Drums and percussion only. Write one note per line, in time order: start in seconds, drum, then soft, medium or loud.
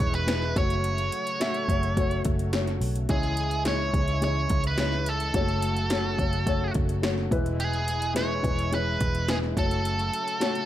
0.00 kick medium
0.00 closed hi-hat medium
0.14 closed hi-hat soft
0.28 snare loud
0.28 closed hi-hat medium
0.42 snare soft
0.56 kick loud
0.56 closed hi-hat medium
0.70 closed hi-hat medium
0.84 closed hi-hat medium
0.98 closed hi-hat soft
1.12 closed hi-hat medium
1.27 closed hi-hat soft
1.41 snare medium
1.41 closed hi-hat medium
1.54 closed hi-hat soft
1.69 kick medium
1.69 closed hi-hat medium
1.83 closed hi-hat soft
1.97 kick medium
1.97 closed hi-hat medium
2.11 closed hi-hat soft
2.25 kick medium
2.25 closed hi-hat medium
2.39 closed hi-hat soft
2.53 snare loud
2.53 closed hi-hat medium
2.67 snare soft
2.67 closed hi-hat soft
2.81 open hi-hat medium
2.96 closed hi-hat soft
3.09 kick loud
3.09 closed hi-hat medium
3.23 closed hi-hat soft
3.37 closed hi-hat medium
3.51 closed hi-hat soft
3.65 snare medium
3.65 closed hi-hat medium
3.94 kick medium
3.94 closed hi-hat medium
4.08 closed hi-hat soft
4.22 closed hi-hat medium
4.49 kick medium
4.49 closed hi-hat medium
4.64 closed hi-hat soft
4.78 snare loud
4.78 closed hi-hat medium
4.92 snare soft
5.06 closed hi-hat medium
5.20 closed hi-hat medium
5.34 kick loud
5.34 closed hi-hat medium
5.48 closed hi-hat soft
5.62 closed hi-hat medium
5.77 closed hi-hat soft
5.90 snare medium
5.90 closed hi-hat medium
6.18 kick medium
6.18 closed hi-hat medium
6.33 closed hi-hat soft
6.47 kick medium
6.47 closed hi-hat medium
6.74 kick medium
6.74 closed hi-hat medium
6.89 closed hi-hat soft
7.03 snare loud
7.03 closed hi-hat medium
7.18 snare soft
7.31 kick loud
7.31 closed hi-hat medium
7.46 closed hi-hat soft
7.60 closed hi-hat medium
7.73 closed hi-hat soft
7.88 closed hi-hat medium
8.02 closed hi-hat medium
8.16 snare medium
8.16 closed hi-hat medium
8.44 kick medium
8.44 closed hi-hat medium
8.59 closed hi-hat soft
8.73 closed hi-hat medium
9.01 kick medium
9.01 closed hi-hat medium
9.15 closed hi-hat soft
9.28 snare loud
9.28 closed hi-hat medium
9.43 snare soft
9.57 kick loud
9.57 closed hi-hat medium
9.71 closed hi-hat soft
9.85 closed hi-hat medium
9.99 closed hi-hat soft
10.13 closed hi-hat medium
10.28 closed hi-hat soft
10.41 snare medium
10.41 closed hi-hat medium
10.55 closed hi-hat soft